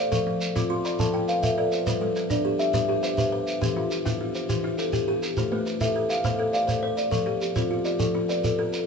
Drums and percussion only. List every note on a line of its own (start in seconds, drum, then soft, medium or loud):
0.12 shekere medium
0.41 shekere medium
0.56 shekere medium
0.85 shekere medium
0.99 shekere medium
1.29 shekere medium
1.43 shekere medium
1.72 shekere medium
1.87 shekere medium
2.16 shekere medium
2.30 shekere medium
2.60 shekere medium
2.74 shekere medium
3.03 shekere medium
3.18 shekere medium
3.48 shekere medium
3.62 shekere medium
3.91 shekere medium
4.06 shekere medium
4.35 shekere medium
4.49 shekere medium
4.78 shekere medium
4.93 shekere medium
5.23 shekere soft
5.37 shekere medium
5.66 shekere medium
5.81 shekere medium
6.10 shekere medium
6.24 shekere medium
6.54 shekere medium
6.68 shekere medium
6.98 shekere medium
7.12 shekere medium
7.42 shekere medium
7.56 shekere medium
7.85 shekere medium
8.00 shekere medium
8.29 shekere medium
8.44 shekere medium
8.73 shekere medium